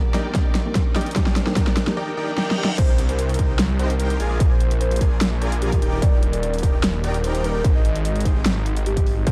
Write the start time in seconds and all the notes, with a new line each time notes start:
Already playing: D#3 F3 G3 A#3 C4 D4 D#4 F4 G4 G#4 A#4 D5, riser
0.05 G4
0.13 F3 A#3 D4 D#4 G4 A#4 D5 G5, snare, closed hi-hat
0.25 D#4
0.34 F3 A#3 D4 D#4 G4 A#4 D5 G5, kick, snare, closed hi-hat
0.45 D5
0.55 A#4, snare, closed hi-hat
0.65 F3 A#3 D4 D#4 G4
0.75 D4, kick, snare, closed hi-hat
0.86 G4
0.94 F3 A#3 D4 D#4 G4 A#4 D5 G5, snare, closed hi-hat
1.01 closed hi-hat
1.06 D#4, closed hi-hat
1.11 F3, closed hi-hat
1.15 G#3 A#3 D4 D#4 G4 A#4 C5 D5 G5, kick, snare, closed hi-hat
1.26 D5, snare
1.36 A#4, snare, closed hi-hat
1.46 F3 A#3 D4 D#4 G4, snare
1.55 F3 A#3 D4 D#4 G4 A#4 D5 G5, kick, snare, closed hi-hat
1.67 D5, snare
1.77 A#4, snare, closed hi-hat
1.86 F3 A#3 D4 D#4 G4, snare
1.97 D#4 G4 A#4 D5 G5, reverse cymbal
2.17 D#4 G4 A#4 D5 G5
2.38 D#4 G4 A#4 D5 G5, snare
2.51 snare
2.58 D#4 G4 A#4 D5 G5
2.65 snare
2.78 C2 D#4 G4 C5, kick, closed hi-hat, crash
2.89 C5
2.98 A#4, closed hi-hat
3.09 C4 C5, closed hi-hat
3.18 C4, closed hi-hat
3.29 G4, closed hi-hat
3.34 closed hi-hat
3.39 D#4 G4 A#4 C5 G5, kick, closed hi-hat
3.49 D#4
3.59 snare, closed hi-hat
3.69 C4
3.79 D#4 G4 A#4 C5 G5, closed hi-hat
3.90 C4, closed hi-hat
4.00 A#4, closed hi-hat
4.10 G4, closed hi-hat
4.20 A#1 F4 G#4 A#4 D5 G#5, closed hi-hat
4.30 F4
4.40 D4 G#4 A#4 G#5, kick, closed hi-hat
4.51 C5 D5
4.60 A#4, closed hi-hat
4.71 D4, closed hi-hat
4.80 D4 C5, closed hi-hat
4.91 G#4, closed hi-hat
4.96 closed hi-hat
5.01 F4 G#4 A#4 D5 G#5, kick, closed hi-hat
5.11 F4
5.21 G#4, snare, closed hi-hat
5.32 D4
5.41 F4 G#4 A#4 D5 G#5, closed hi-hat
5.52 D4, closed hi-hat
5.62 G4 A#4, closed hi-hat
5.72 G#4, kick, closed hi-hat
5.82 D#1 D#4 G4 A#4 D5 G5, closed hi-hat
5.92 D#4
6.02 D5, kick, closed hi-hat
6.13 D5
6.22 A#4, closed hi-hat
6.33 D4 D5, closed hi-hat
6.43 D4, closed hi-hat
6.53 G4, closed hi-hat
6.59 closed hi-hat
6.63 D#4 G4 A#4 D5 G5, kick, closed hi-hat
6.74 D#4
6.84 snare, closed hi-hat
6.94 D4
7.03 D#4 G4 A#4 D5 G5, closed hi-hat
7.14 D4, closed hi-hat
7.23 A#4 C5, closed hi-hat
7.34 G4, closed hi-hat
7.44 D#4 G4 A#4 D5 G5, closed hi-hat
7.55 D#4
7.64 G#1 D#4 C5, kick, closed hi-hat
7.75 C5 D#5
7.85 G#4, closed hi-hat
7.95 C4, closed hi-hat
8.05 C4 D#5, closed hi-hat
8.16 G4, closed hi-hat
8.21 closed hi-hat
8.25 D#4 G4 G#4 C5 G5, kick, closed hi-hat
8.46 snare, closed hi-hat
8.56 C4
8.66 D#4, closed hi-hat
8.76 D#5, closed hi-hat
8.86 G4, closed hi-hat
8.97 G4, kick, closed hi-hat
9.06 C4, open hi-hat
9.17 D#4
9.26 C2 D#4 G4 A#4 C5 G5, kick, closed hi-hat